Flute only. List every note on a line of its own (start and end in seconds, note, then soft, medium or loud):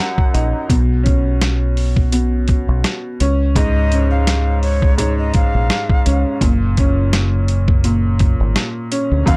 0.00 0.66 F#5 medium
3.56 4.08 D#5 loud
4.11 4.60 F5 medium
4.63 4.95 C#5 medium
4.98 5.16 C#5 medium
5.18 5.33 D#5 medium
5.35 6.38 F5 medium
9.27 9.37 F5 loud